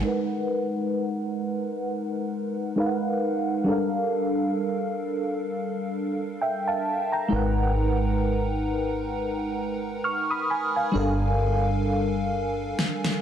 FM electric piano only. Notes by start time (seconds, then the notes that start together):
0.01 G#3 D#4 A#4
0.07 B4 F#5
2.76 G#3 D#4 A#4 B4
2.80 F5
2.86 F#5
3.64 G3 D4 A4
3.70 A#4 F5
6.41 E5 G5
6.68 F5 A5
7.12 G5 A#5
7.28 G#3 D#4 A#4
7.34 B4 F#5
10.04 C#6 F6
10.30 B5 D#6
10.50 G#5 B5
10.76 F5 G#5
10.92 G3 D4 A4
10.97 A#4 F5